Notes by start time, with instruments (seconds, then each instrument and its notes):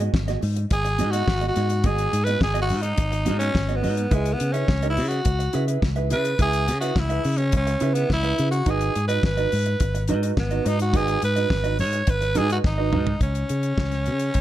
0.00 clean electric guitar B3 F#4 G#4 D#5, closed hi-hat
0.14 fingered electric bass G#1, muted clean electric guitar stroke, kick, snare
0.28 clean electric guitar B3 F#4 G#4 D#5, snare, closed hi-hat
0.42 fingered electric bass G#2, muted clean electric guitar stroke, open hi-hat
0.56 muted clean electric guitar stroke, closed hi-hat
0.70 fingered electric bass G#1, tenor saxophone G#4, muted clean electric guitar stroke, kick, closed hi-hat
0.85 muted clean electric guitar stroke, closed hi-hat
0.98 fingered electric bass G#2, clean electric guitar B3 F#4 G#4 D#5, closed hi-hat
1.11 tenor saxophone F#4, clean electric guitar F#4 G#4 D#5, closed hi-hat
1.15 clean electric guitar B3
1.27 fingered electric bass G#1, muted clean electric guitar stroke, kick, snare
1.41 clean electric guitar B3 F#4 G#4 D#5, closed hi-hat
1.48 tenor saxophone F#4
1.56 fingered electric bass G#2, clean electric guitar B3 F#4 G#4 D#5, closed hi-hat
1.70 muted clean electric guitar stroke, closed hi-hat
1.84 fingered electric bass G#1, clean electric guitar B3 F#4 G#4 D#5, tenor saxophone G#4, kick, closed hi-hat
1.98 closed hi-hat
2.13 fingered electric bass G#2, muted clean electric guitar stroke, closed hi-hat
2.24 clean electric guitar F#4 G#4 D#5, tenor saxophone B4, closed hi-hat
2.29 clean electric guitar B3
2.41 fingered electric bass G#1, tenor saxophone G#4, muted clean electric guitar stroke, kick, snare
2.54 clean electric guitar B3 F#4 G#4 D#5, closed hi-hat
2.62 tenor saxophone F#4
2.68 fingered electric bass G#2, muted clean electric guitar stroke, open hi-hat
2.81 tenor saxophone D#4, muted clean electric guitar stroke, closed hi-hat
2.97 fingered electric bass G#1, muted clean electric guitar stroke, kick, closed hi-hat
3.12 muted clean electric guitar stroke, closed hi-hat
3.26 fingered electric bass G#2, clean electric guitar B3 F#4 G#4 D#5, closed hi-hat
3.39 clean electric guitar B3 F#4 G#4 D#5, tenor saxophone C#4, closed hi-hat
3.54 fingered electric bass G#1, muted clean electric guitar stroke, kick, snare
3.69 clean electric guitar B3 F#4 G#4 D#5, closed hi-hat
3.76 tenor saxophone B3
3.82 fingered electric bass G#2, clean electric guitar B3 F#4 G#4 D#5, open hi-hat
3.97 muted clean electric guitar stroke, closed hi-hat
4.11 fingered electric bass C#2, tenor saxophone G#3, clean electric guitar E4 G#4 B4 E5, kick, closed hi-hat
4.25 closed hi-hat
4.33 tenor saxophone B3
4.40 fingered electric bass C#3, muted clean electric guitar stroke, closed hi-hat
4.53 tenor saxophone C#4, clean electric guitar E4 G#4 B4 E5, closed hi-hat
4.68 fingered electric bass C#2, muted clean electric guitar stroke, kick, snare
4.82 clean electric guitar E4 G#4 B4 E5, closed hi-hat
4.90 tenor saxophone E4
4.97 fingered electric bass C#3, muted clean electric guitar stroke, open hi-hat
5.08 tenor saxophone F#4, muted clean electric guitar stroke, closed hi-hat
5.25 fingered electric bass C#2, muted clean electric guitar stroke, kick, closed hi-hat
5.39 muted clean electric guitar stroke, closed hi-hat
5.53 fingered electric bass C#3, clean electric guitar E4 G#4 B4 E5, closed hi-hat
5.68 clean electric guitar E4 G#4 B4 E5, closed hi-hat
5.82 fingered electric bass C#2, muted clean electric guitar stroke, kick, snare
5.96 clean electric guitar E4 G#4 B4 E5, closed hi-hat
6.10 fingered electric bass C#3, clean electric guitar E4 G#4 B4 E5, tenor saxophone B4, closed hi-hat
6.25 muted clean electric guitar stroke, closed hi-hat
6.39 fingered electric bass C#2, clean electric guitar E4 G#4 B4 E5, tenor saxophone G#4, kick, closed hi-hat
6.53 closed hi-hat
6.67 fingered electric bass C#3, muted clean electric guitar stroke, closed hi-hat
6.80 clean electric guitar E4 G#4 B4 E5, tenor saxophone F#4, closed hi-hat
6.96 fingered electric bass C#2, tenor saxophone E4, muted clean electric guitar stroke, kick, snare
7.10 clean electric guitar E4 G#4 B4 E5, closed hi-hat
7.24 fingered electric bass C#3, muted clean electric guitar stroke, open hi-hat
7.37 tenor saxophone C#4, muted clean electric guitar stroke, closed hi-hat
7.52 fingered electric bass C#2, muted clean electric guitar stroke, kick, closed hi-hat
7.57 tenor saxophone C#4
7.67 muted clean electric guitar stroke, closed hi-hat
7.80 fingered electric bass C#3, clean electric guitar E4 G#4 B4 E5, closed hi-hat
7.94 tenor saxophone B3, clean electric guitar E4 G#4 B4 E5, closed hi-hat
8.10 fingered electric bass C#2, tenor saxophone E4, muted clean electric guitar stroke, kick, snare
8.23 clean electric guitar E4 G#4 B4 E5, closed hi-hat
8.38 fingered electric bass C#3, clean electric guitar E4 G#4 B4 E5, closed hi-hat
8.51 tenor saxophone F#4, muted clean electric guitar stroke, closed hi-hat
8.66 fingered electric bass G#1, clean electric guitar D#4 F#4 B4 D#5, tenor saxophone G#4, kick, closed hi-hat
8.81 closed hi-hat
8.95 fingered electric bass G#2, muted clean electric guitar stroke, closed hi-hat
9.08 clean electric guitar D#4 F#4 B4 D#5, tenor saxophone B4, closed hi-hat
9.23 fingered electric bass G#1, tenor saxophone B4, muted clean electric guitar stroke, kick, snare
9.37 clean electric guitar D#4 F#4 B4 D#5, closed hi-hat
9.52 fingered electric bass G#2, muted clean electric guitar stroke, open hi-hat
9.66 muted clean electric guitar stroke, closed hi-hat
9.80 fingered electric bass G#1, muted clean electric guitar stroke, kick, closed hi-hat
9.95 muted clean electric guitar stroke, closed hi-hat
10.08 fingered electric bass G#2, clean electric guitar D#4 F#4 B4 D#5, closed hi-hat
10.22 clean electric guitar D#4 F#4 B4 D#5, closed hi-hat
10.37 fingered electric bass G#1, tenor saxophone B3, muted clean electric guitar stroke, kick, snare
10.51 clean electric guitar D#4 F#4 B4 D#5, closed hi-hat
10.65 fingered electric bass G#2, clean electric guitar D#4 F#4 B4 D#5, tenor saxophone D#4, closed hi-hat
10.79 tenor saxophone F#4, muted clean electric guitar stroke, closed hi-hat
10.93 fingered electric bass G#1, clean electric guitar D#4 F#4 B4 D#5, tenor saxophone G#4, kick, closed hi-hat
11.08 closed hi-hat
11.22 fingered electric bass G#2, tenor saxophone B4, closed hi-hat
11.36 clean electric guitar D#4 F#4 B4 D#5, closed hi-hat
11.50 fingered electric bass G#1, kick, snare
11.64 clean electric guitar D#4 F#4 B4 D#5, closed hi-hat
11.79 fingered electric bass G#2, tenor saxophone C#5, muted clean electric guitar stroke, open hi-hat
11.93 muted clean electric guitar stroke, closed hi-hat
12.07 fingered electric bass G#1, tenor saxophone B4, muted clean electric guitar stroke, kick, closed hi-hat
12.21 muted clean electric guitar stroke, closed hi-hat
12.35 fingered electric bass G#2, clean electric guitar D#4 F#4 B4 D#5, tenor saxophone G#4, closed hi-hat
12.50 clean electric guitar D#4 F#4 B4 D#5, tenor saxophone F#4, closed hi-hat
12.64 fingered electric bass G#1, tenor saxophone D#4, kick, snare
12.78 clean electric guitar D#4 F#4 B4 D#5
12.92 fingered electric bass G#2, clean electric guitar D#4 F#4 B4 D#5, mid tom
13.07 muted clean electric guitar stroke, floor tom
13.21 fingered electric bass C#2, tenor saxophone C#4, kick, closed hi-hat
13.35 closed hi-hat
13.49 fingered electric bass C#3, closed hi-hat
13.63 closed hi-hat
13.78 fingered electric bass C#2, kick, snare
13.91 snare, closed hi-hat
14.06 fingered electric bass C#3, closed hi-hat
14.19 closed hi-hat
14.34 fingered electric bass C#2, kick, closed hi-hat